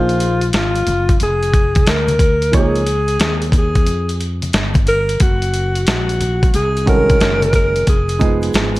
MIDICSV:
0, 0, Header, 1, 5, 480
1, 0, Start_track
1, 0, Tempo, 666667
1, 1827, Time_signature, 4, 2, 24, 8
1, 6334, End_track
2, 0, Start_track
2, 0, Title_t, "Alto saxophone"
2, 0, Program_c, 0, 65
2, 0, Note_on_c, 0, 65, 88
2, 365, Note_off_c, 0, 65, 0
2, 405, Note_on_c, 0, 65, 83
2, 847, Note_off_c, 0, 65, 0
2, 886, Note_on_c, 0, 68, 96
2, 1370, Note_on_c, 0, 70, 85
2, 1381, Note_off_c, 0, 68, 0
2, 1838, Note_off_c, 0, 70, 0
2, 1849, Note_on_c, 0, 68, 96
2, 2529, Note_off_c, 0, 68, 0
2, 2577, Note_on_c, 0, 68, 84
2, 3013, Note_off_c, 0, 68, 0
2, 3518, Note_on_c, 0, 70, 110
2, 3760, Note_on_c, 0, 66, 90
2, 3771, Note_off_c, 0, 70, 0
2, 4231, Note_off_c, 0, 66, 0
2, 4235, Note_on_c, 0, 66, 82
2, 4682, Note_off_c, 0, 66, 0
2, 4717, Note_on_c, 0, 68, 97
2, 4936, Note_off_c, 0, 68, 0
2, 4961, Note_on_c, 0, 70, 104
2, 5405, Note_off_c, 0, 70, 0
2, 5438, Note_on_c, 0, 70, 102
2, 5656, Note_off_c, 0, 70, 0
2, 5683, Note_on_c, 0, 68, 76
2, 6126, Note_off_c, 0, 68, 0
2, 6334, End_track
3, 0, Start_track
3, 0, Title_t, "Grand piano"
3, 0, Program_c, 1, 0
3, 0, Note_on_c, 1, 53, 68
3, 0, Note_on_c, 1, 58, 60
3, 0, Note_on_c, 1, 63, 56
3, 0, Note_on_c, 1, 68, 57
3, 0, Note_on_c, 1, 72, 70
3, 266, Note_off_c, 1, 53, 0
3, 268, Note_off_c, 1, 58, 0
3, 271, Note_off_c, 1, 63, 0
3, 273, Note_off_c, 1, 68, 0
3, 275, Note_off_c, 1, 72, 0
3, 1810, Note_on_c, 1, 53, 67
3, 1815, Note_on_c, 1, 58, 67
3, 1820, Note_on_c, 1, 63, 60
3, 1824, Note_on_c, 1, 68, 59
3, 1828, Note_on_c, 1, 73, 82
3, 2009, Note_off_c, 1, 53, 0
3, 2011, Note_off_c, 1, 58, 0
3, 2014, Note_off_c, 1, 63, 0
3, 2016, Note_off_c, 1, 68, 0
3, 2018, Note_off_c, 1, 73, 0
3, 4938, Note_on_c, 1, 51, 72
3, 4943, Note_on_c, 1, 56, 67
3, 4945, Note_on_c, 1, 61, 64
3, 4950, Note_on_c, 1, 66, 65
3, 4955, Note_on_c, 1, 69, 65
3, 5003, Note_on_c, 1, 70, 76
3, 5012, Note_off_c, 1, 69, 0
3, 5629, Note_off_c, 1, 51, 0
3, 5632, Note_off_c, 1, 56, 0
3, 5633, Note_off_c, 1, 61, 0
3, 5635, Note_off_c, 1, 66, 0
3, 5662, Note_off_c, 1, 70, 0
3, 5896, Note_on_c, 1, 53, 73
3, 5898, Note_on_c, 1, 56, 78
3, 5904, Note_on_c, 1, 59, 69
3, 5907, Note_on_c, 1, 63, 71
3, 5912, Note_on_c, 1, 68, 85
3, 6334, Note_off_c, 1, 53, 0
3, 6334, Note_off_c, 1, 56, 0
3, 6334, Note_off_c, 1, 59, 0
3, 6334, Note_off_c, 1, 63, 0
3, 6334, Note_off_c, 1, 68, 0
3, 6334, End_track
4, 0, Start_track
4, 0, Title_t, "Fretless electric bass"
4, 0, Program_c, 2, 35
4, 0, Note_on_c, 2, 34, 116
4, 364, Note_off_c, 2, 34, 0
4, 386, Note_on_c, 2, 32, 96
4, 615, Note_off_c, 2, 32, 0
4, 626, Note_on_c, 2, 30, 92
4, 855, Note_off_c, 2, 30, 0
4, 867, Note_on_c, 2, 29, 98
4, 1323, Note_off_c, 2, 29, 0
4, 1345, Note_on_c, 2, 38, 74
4, 1802, Note_off_c, 2, 38, 0
4, 1825, Note_on_c, 2, 37, 102
4, 2282, Note_off_c, 2, 37, 0
4, 2304, Note_on_c, 2, 39, 87
4, 2785, Note_off_c, 2, 39, 0
4, 2785, Note_on_c, 2, 41, 95
4, 3242, Note_off_c, 2, 41, 0
4, 3269, Note_on_c, 2, 31, 78
4, 3724, Note_off_c, 2, 31, 0
4, 3748, Note_on_c, 2, 30, 101
4, 4203, Note_off_c, 2, 30, 0
4, 4232, Note_on_c, 2, 34, 85
4, 4685, Note_off_c, 2, 34, 0
4, 4711, Note_on_c, 2, 36, 106
4, 5165, Note_off_c, 2, 36, 0
4, 5189, Note_on_c, 2, 30, 90
4, 5644, Note_off_c, 2, 30, 0
4, 5670, Note_on_c, 2, 29, 110
4, 6124, Note_off_c, 2, 29, 0
4, 6150, Note_on_c, 2, 32, 94
4, 6334, Note_off_c, 2, 32, 0
4, 6334, End_track
5, 0, Start_track
5, 0, Title_t, "Drums"
5, 64, Note_on_c, 9, 82, 36
5, 65, Note_on_c, 9, 42, 45
5, 136, Note_off_c, 9, 82, 0
5, 137, Note_off_c, 9, 42, 0
5, 146, Note_on_c, 9, 42, 69
5, 147, Note_on_c, 9, 82, 43
5, 218, Note_off_c, 9, 42, 0
5, 219, Note_off_c, 9, 82, 0
5, 298, Note_on_c, 9, 42, 45
5, 300, Note_on_c, 9, 82, 37
5, 370, Note_off_c, 9, 42, 0
5, 372, Note_off_c, 9, 82, 0
5, 382, Note_on_c, 9, 42, 84
5, 384, Note_on_c, 9, 82, 60
5, 390, Note_on_c, 9, 38, 109
5, 454, Note_off_c, 9, 42, 0
5, 456, Note_off_c, 9, 82, 0
5, 462, Note_off_c, 9, 38, 0
5, 544, Note_on_c, 9, 42, 50
5, 544, Note_on_c, 9, 82, 42
5, 616, Note_off_c, 9, 42, 0
5, 616, Note_off_c, 9, 82, 0
5, 624, Note_on_c, 9, 42, 73
5, 626, Note_on_c, 9, 63, 45
5, 626, Note_on_c, 9, 64, 63
5, 626, Note_on_c, 9, 82, 46
5, 696, Note_off_c, 9, 42, 0
5, 698, Note_off_c, 9, 63, 0
5, 698, Note_off_c, 9, 64, 0
5, 698, Note_off_c, 9, 82, 0
5, 784, Note_on_c, 9, 42, 49
5, 785, Note_on_c, 9, 36, 83
5, 786, Note_on_c, 9, 82, 47
5, 856, Note_off_c, 9, 42, 0
5, 857, Note_off_c, 9, 36, 0
5, 858, Note_off_c, 9, 82, 0
5, 864, Note_on_c, 9, 42, 85
5, 868, Note_on_c, 9, 63, 45
5, 868, Note_on_c, 9, 82, 64
5, 936, Note_off_c, 9, 42, 0
5, 940, Note_off_c, 9, 63, 0
5, 940, Note_off_c, 9, 82, 0
5, 1027, Note_on_c, 9, 42, 42
5, 1029, Note_on_c, 9, 82, 45
5, 1099, Note_off_c, 9, 42, 0
5, 1101, Note_off_c, 9, 82, 0
5, 1104, Note_on_c, 9, 82, 38
5, 1105, Note_on_c, 9, 36, 82
5, 1107, Note_on_c, 9, 42, 53
5, 1176, Note_off_c, 9, 82, 0
5, 1177, Note_off_c, 9, 36, 0
5, 1179, Note_off_c, 9, 42, 0
5, 1261, Note_on_c, 9, 42, 55
5, 1267, Note_on_c, 9, 36, 88
5, 1269, Note_on_c, 9, 63, 63
5, 1269, Note_on_c, 9, 82, 44
5, 1333, Note_off_c, 9, 42, 0
5, 1339, Note_off_c, 9, 36, 0
5, 1341, Note_off_c, 9, 63, 0
5, 1341, Note_off_c, 9, 82, 0
5, 1343, Note_on_c, 9, 42, 79
5, 1349, Note_on_c, 9, 38, 105
5, 1353, Note_on_c, 9, 82, 56
5, 1415, Note_off_c, 9, 42, 0
5, 1421, Note_off_c, 9, 38, 0
5, 1425, Note_off_c, 9, 82, 0
5, 1497, Note_on_c, 9, 63, 73
5, 1497, Note_on_c, 9, 82, 53
5, 1501, Note_on_c, 9, 42, 54
5, 1569, Note_off_c, 9, 63, 0
5, 1569, Note_off_c, 9, 82, 0
5, 1573, Note_off_c, 9, 42, 0
5, 1579, Note_on_c, 9, 36, 86
5, 1582, Note_on_c, 9, 42, 73
5, 1584, Note_on_c, 9, 64, 64
5, 1584, Note_on_c, 9, 82, 42
5, 1651, Note_off_c, 9, 36, 0
5, 1654, Note_off_c, 9, 42, 0
5, 1656, Note_off_c, 9, 64, 0
5, 1656, Note_off_c, 9, 82, 0
5, 1741, Note_on_c, 9, 82, 41
5, 1742, Note_on_c, 9, 42, 49
5, 1813, Note_off_c, 9, 82, 0
5, 1814, Note_off_c, 9, 42, 0
5, 1823, Note_on_c, 9, 42, 80
5, 1825, Note_on_c, 9, 36, 91
5, 1831, Note_on_c, 9, 82, 52
5, 1895, Note_off_c, 9, 42, 0
5, 1897, Note_off_c, 9, 36, 0
5, 1903, Note_off_c, 9, 82, 0
5, 1982, Note_on_c, 9, 82, 34
5, 1984, Note_on_c, 9, 42, 44
5, 2054, Note_off_c, 9, 82, 0
5, 2056, Note_off_c, 9, 42, 0
5, 2063, Note_on_c, 9, 42, 68
5, 2064, Note_on_c, 9, 82, 44
5, 2135, Note_off_c, 9, 42, 0
5, 2136, Note_off_c, 9, 82, 0
5, 2217, Note_on_c, 9, 42, 45
5, 2224, Note_on_c, 9, 82, 40
5, 2289, Note_off_c, 9, 42, 0
5, 2296, Note_off_c, 9, 82, 0
5, 2301, Note_on_c, 9, 42, 84
5, 2307, Note_on_c, 9, 82, 65
5, 2310, Note_on_c, 9, 38, 113
5, 2373, Note_off_c, 9, 42, 0
5, 2379, Note_off_c, 9, 82, 0
5, 2382, Note_off_c, 9, 38, 0
5, 2461, Note_on_c, 9, 42, 53
5, 2465, Note_on_c, 9, 82, 42
5, 2533, Note_off_c, 9, 42, 0
5, 2535, Note_on_c, 9, 36, 88
5, 2537, Note_off_c, 9, 82, 0
5, 2542, Note_on_c, 9, 42, 70
5, 2546, Note_on_c, 9, 63, 47
5, 2546, Note_on_c, 9, 64, 65
5, 2546, Note_on_c, 9, 82, 45
5, 2607, Note_off_c, 9, 36, 0
5, 2614, Note_off_c, 9, 42, 0
5, 2618, Note_off_c, 9, 63, 0
5, 2618, Note_off_c, 9, 64, 0
5, 2618, Note_off_c, 9, 82, 0
5, 2702, Note_on_c, 9, 42, 46
5, 2703, Note_on_c, 9, 82, 43
5, 2704, Note_on_c, 9, 36, 80
5, 2774, Note_off_c, 9, 42, 0
5, 2775, Note_off_c, 9, 82, 0
5, 2776, Note_off_c, 9, 36, 0
5, 2780, Note_on_c, 9, 63, 46
5, 2780, Note_on_c, 9, 82, 63
5, 2783, Note_on_c, 9, 42, 75
5, 2852, Note_off_c, 9, 63, 0
5, 2852, Note_off_c, 9, 82, 0
5, 2855, Note_off_c, 9, 42, 0
5, 2945, Note_on_c, 9, 42, 40
5, 2947, Note_on_c, 9, 82, 45
5, 3017, Note_off_c, 9, 42, 0
5, 3019, Note_off_c, 9, 82, 0
5, 3023, Note_on_c, 9, 82, 41
5, 3028, Note_on_c, 9, 42, 49
5, 3095, Note_off_c, 9, 82, 0
5, 3100, Note_off_c, 9, 42, 0
5, 3184, Note_on_c, 9, 42, 55
5, 3184, Note_on_c, 9, 63, 60
5, 3184, Note_on_c, 9, 82, 44
5, 3256, Note_off_c, 9, 42, 0
5, 3256, Note_off_c, 9, 63, 0
5, 3256, Note_off_c, 9, 82, 0
5, 3264, Note_on_c, 9, 42, 73
5, 3270, Note_on_c, 9, 38, 99
5, 3273, Note_on_c, 9, 82, 60
5, 3336, Note_off_c, 9, 42, 0
5, 3342, Note_off_c, 9, 38, 0
5, 3345, Note_off_c, 9, 82, 0
5, 3415, Note_on_c, 9, 63, 74
5, 3415, Note_on_c, 9, 82, 51
5, 3421, Note_on_c, 9, 36, 85
5, 3421, Note_on_c, 9, 42, 53
5, 3487, Note_off_c, 9, 63, 0
5, 3487, Note_off_c, 9, 82, 0
5, 3493, Note_off_c, 9, 36, 0
5, 3493, Note_off_c, 9, 42, 0
5, 3503, Note_on_c, 9, 64, 61
5, 3503, Note_on_c, 9, 82, 42
5, 3505, Note_on_c, 9, 42, 72
5, 3575, Note_off_c, 9, 64, 0
5, 3575, Note_off_c, 9, 82, 0
5, 3577, Note_off_c, 9, 42, 0
5, 3663, Note_on_c, 9, 82, 40
5, 3665, Note_on_c, 9, 42, 50
5, 3735, Note_off_c, 9, 82, 0
5, 3737, Note_off_c, 9, 42, 0
5, 3743, Note_on_c, 9, 42, 83
5, 3747, Note_on_c, 9, 36, 95
5, 3756, Note_on_c, 9, 82, 47
5, 3815, Note_off_c, 9, 42, 0
5, 3819, Note_off_c, 9, 36, 0
5, 3828, Note_off_c, 9, 82, 0
5, 3903, Note_on_c, 9, 42, 52
5, 3909, Note_on_c, 9, 82, 36
5, 3975, Note_off_c, 9, 42, 0
5, 3981, Note_off_c, 9, 82, 0
5, 3986, Note_on_c, 9, 42, 63
5, 3989, Note_on_c, 9, 82, 46
5, 4058, Note_off_c, 9, 42, 0
5, 4061, Note_off_c, 9, 82, 0
5, 4143, Note_on_c, 9, 42, 51
5, 4145, Note_on_c, 9, 82, 39
5, 4215, Note_off_c, 9, 42, 0
5, 4217, Note_off_c, 9, 82, 0
5, 4224, Note_on_c, 9, 42, 92
5, 4230, Note_on_c, 9, 82, 65
5, 4232, Note_on_c, 9, 38, 114
5, 4296, Note_off_c, 9, 42, 0
5, 4302, Note_off_c, 9, 82, 0
5, 4304, Note_off_c, 9, 38, 0
5, 4387, Note_on_c, 9, 42, 53
5, 4391, Note_on_c, 9, 82, 38
5, 4459, Note_off_c, 9, 42, 0
5, 4463, Note_off_c, 9, 82, 0
5, 4468, Note_on_c, 9, 42, 72
5, 4471, Note_on_c, 9, 63, 44
5, 4471, Note_on_c, 9, 64, 62
5, 4471, Note_on_c, 9, 82, 45
5, 4540, Note_off_c, 9, 42, 0
5, 4543, Note_off_c, 9, 63, 0
5, 4543, Note_off_c, 9, 64, 0
5, 4543, Note_off_c, 9, 82, 0
5, 4628, Note_on_c, 9, 36, 93
5, 4630, Note_on_c, 9, 42, 49
5, 4631, Note_on_c, 9, 82, 47
5, 4700, Note_off_c, 9, 36, 0
5, 4702, Note_off_c, 9, 42, 0
5, 4703, Note_off_c, 9, 82, 0
5, 4707, Note_on_c, 9, 42, 85
5, 4708, Note_on_c, 9, 63, 46
5, 4708, Note_on_c, 9, 82, 60
5, 4779, Note_off_c, 9, 42, 0
5, 4780, Note_off_c, 9, 63, 0
5, 4780, Note_off_c, 9, 82, 0
5, 4872, Note_on_c, 9, 82, 45
5, 4873, Note_on_c, 9, 42, 40
5, 4944, Note_off_c, 9, 82, 0
5, 4945, Note_off_c, 9, 42, 0
5, 4947, Note_on_c, 9, 82, 38
5, 4949, Note_on_c, 9, 36, 84
5, 4951, Note_on_c, 9, 42, 53
5, 5019, Note_off_c, 9, 82, 0
5, 5021, Note_off_c, 9, 36, 0
5, 5023, Note_off_c, 9, 42, 0
5, 5109, Note_on_c, 9, 42, 53
5, 5111, Note_on_c, 9, 36, 90
5, 5111, Note_on_c, 9, 63, 58
5, 5111, Note_on_c, 9, 82, 46
5, 5181, Note_off_c, 9, 42, 0
5, 5183, Note_off_c, 9, 36, 0
5, 5183, Note_off_c, 9, 63, 0
5, 5183, Note_off_c, 9, 82, 0
5, 5188, Note_on_c, 9, 42, 68
5, 5194, Note_on_c, 9, 38, 90
5, 5197, Note_on_c, 9, 82, 55
5, 5260, Note_off_c, 9, 42, 0
5, 5266, Note_off_c, 9, 38, 0
5, 5269, Note_off_c, 9, 82, 0
5, 5340, Note_on_c, 9, 63, 70
5, 5340, Note_on_c, 9, 82, 53
5, 5345, Note_on_c, 9, 42, 51
5, 5412, Note_off_c, 9, 63, 0
5, 5412, Note_off_c, 9, 82, 0
5, 5417, Note_off_c, 9, 42, 0
5, 5420, Note_on_c, 9, 64, 61
5, 5420, Note_on_c, 9, 82, 42
5, 5422, Note_on_c, 9, 36, 79
5, 5426, Note_on_c, 9, 42, 75
5, 5492, Note_off_c, 9, 64, 0
5, 5492, Note_off_c, 9, 82, 0
5, 5494, Note_off_c, 9, 36, 0
5, 5498, Note_off_c, 9, 42, 0
5, 5582, Note_on_c, 9, 82, 40
5, 5585, Note_on_c, 9, 42, 48
5, 5654, Note_off_c, 9, 82, 0
5, 5657, Note_off_c, 9, 42, 0
5, 5666, Note_on_c, 9, 42, 77
5, 5669, Note_on_c, 9, 36, 88
5, 5673, Note_on_c, 9, 82, 51
5, 5738, Note_off_c, 9, 42, 0
5, 5741, Note_off_c, 9, 36, 0
5, 5745, Note_off_c, 9, 82, 0
5, 5822, Note_on_c, 9, 82, 36
5, 5826, Note_on_c, 9, 42, 48
5, 5894, Note_off_c, 9, 82, 0
5, 5898, Note_off_c, 9, 42, 0
5, 5901, Note_on_c, 9, 82, 48
5, 5912, Note_on_c, 9, 36, 95
5, 5912, Note_on_c, 9, 42, 70
5, 5973, Note_off_c, 9, 82, 0
5, 5984, Note_off_c, 9, 36, 0
5, 5984, Note_off_c, 9, 42, 0
5, 6058, Note_on_c, 9, 82, 37
5, 6069, Note_on_c, 9, 42, 50
5, 6130, Note_off_c, 9, 82, 0
5, 6141, Note_off_c, 9, 42, 0
5, 6142, Note_on_c, 9, 82, 66
5, 6151, Note_on_c, 9, 42, 87
5, 6159, Note_on_c, 9, 38, 117
5, 6214, Note_off_c, 9, 82, 0
5, 6223, Note_off_c, 9, 42, 0
5, 6231, Note_off_c, 9, 38, 0
5, 6302, Note_on_c, 9, 82, 39
5, 6311, Note_on_c, 9, 42, 53
5, 6334, Note_off_c, 9, 42, 0
5, 6334, Note_off_c, 9, 82, 0
5, 6334, End_track
0, 0, End_of_file